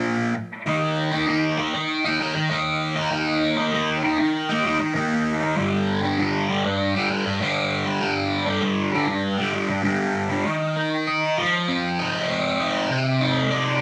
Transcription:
Already playing: distorted electric guitar A#2 F3 A#3
0.66 distorted electric guitar D#3 A#3 D#4
1.12 distorted electric guitar A#3 D#4
1.27 distorted electric guitar D#3 A#3 D#4
1.58 distorted electric guitar D#3 A#3 D#4
1.74 muted distorted electric guitar stroke
2.04 distorted electric guitar A#3 D#4
2.19 distorted electric guitar D#3 A#3 D#4
2.35 muted distorted electric guitar stroke
2.50 distorted electric guitar D#3 A#3 D#4
2.96 distorted electric guitar A#3 D#4
3.11 distorted electric guitar D#3 A#3 D#4
3.57 distorted electric guitar A#3 D#4
3.72 distorted electric guitar D#3 A#3 D#4
4.03 distorted electric guitar D#3 A#3 D#4
4.19 muted distorted electric guitar stroke
4.49 distorted electric guitar A#3 D#4
4.64 distorted electric guitar D#3 A#3 D#4
4.80 muted distorted electric guitar stroke
4.95 distorted electric guitar D#3 A#3 D#4
5.40 distorted electric guitar A#3 D#4
5.56 distorted electric guitar G2 D3 G3
6.02 distorted electric guitar D3 G3
6.18 distorted electric guitar G2 D3 G3
6.49 distorted electric guitar G2 D3 G3
6.64 muted distorted electric guitar stroke
6.94 distorted electric guitar D3 G3
7.09 distorted electric guitar G2 D3 G3
7.26 muted distorted electric guitar stroke
7.41 distorted electric guitar G2 D3 G3
7.86 distorted electric guitar D3 G3
8.00 distorted electric guitar G2 D3 G3
8.46 distorted electric guitar D3 G3
8.61 distorted electric guitar G2 D3 G3
8.92 distorted electric guitar G2 D3 G3
9.08 muted distorted electric guitar stroke
9.38 distorted electric guitar D3 G3
9.53 distorted electric guitar G2 D3 G3
9.69 muted distorted electric guitar stroke
9.83 distorted electric guitar G2 D3 G3
10.30 distorted electric guitar D3 G3
10.46 distorted electric guitar D#3
10.76 distorted electric guitar D#4
11.07 distorted electric guitar D#5
11.37 distorted electric guitar F3
11.68 distorted electric guitar C4
11.99 distorted electric guitar D#4
12.29 distorted electric guitar C4
12.60 distorted electric guitar D#4
12.90 distorted electric guitar C3
13.21 distorted electric guitar D#4
13.51 distorted electric guitar D5

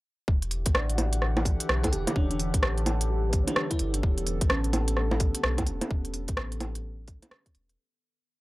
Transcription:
0.28 sub bass E1, ambient pad E3, kick
0.39 ambient pad G4, closed hi-hat
0.46 ambient pad D3
0.51 open hi-hat
0.58 ambient pad F#5
0.66 sub bass A1, kick, closed hi-hat
0.75 synth keys D5, cross-stick
0.90 closed hi-hat
0.95 synth keys F#5, open hi-hat, low bongo
1.10 ambient pad A4, closed hi-hat
1.22 cross-stick
1.37 low bongo
1.45 kick, open hi-hat
1.60 closed hi-hat
1.69 sub bass B1, cross-stick
1.83 fm electric piano A4, kick, closed hi-hat, low bongo
1.93 sub bass E1, fm electric piano G4, open hi-hat
2.07 closed hi-hat, low bongo
2.16 sub bass E1, fm electric piano D4, synth keys C#5, kick
2.30 fm electric piano D4, closed hi-hat
2.39 open hi-hat
2.54 sub bass A1, kick, closed hi-hat
2.63 cross-stick
2.78 closed hi-hat
2.86 open hi-hat, low bongo
3.01 closed hi-hat
3.10 synth keys G4
3.29 synth keys B4, kick, open hi-hat
3.43 synth keys C#5
3.47 fm electric piano D4, closed hi-hat, low bongo
3.56 cross-stick
3.70 fm electric piano E4, kick, closed hi-hat
3.79 sub bass G1, open hi-hat
3.94 closed hi-hat
4.03 sub bass E1, ambient pad B3, kick
4.18 closed hi-hat
4.27 open hi-hat
4.41 sub bass A1, kick, closed hi-hat
4.50 synth keys C#4, cross-stick
4.64 closed hi-hat
4.73 open hi-hat, low bongo
4.88 closed hi-hat
4.97 synth keys A4, cross-stick
5.11 low bongo
5.20 kick, open hi-hat
5.35 closed hi-hat
5.44 sub bass B1, cross-stick
5.58 kick, closed hi-hat, low bongo
5.67 sub bass E1, open hi-hat
5.81 closed hi-hat, low bongo
5.91 sub bass E1, kick
6.05 closed hi-hat
6.14 open hi-hat
6.28 sub bass A1, kick, closed hi-hat
6.37 cross-stick
6.52 closed hi-hat
6.60 open hi-hat, low bongo
6.75 closed hi-hat
7.08 kick, open hi-hat
7.22 closed hi-hat, low bongo
7.31 cross-stick
7.46 kick, closed hi-hat
7.55 sub bass E1, open hi-hat
7.69 closed hi-hat

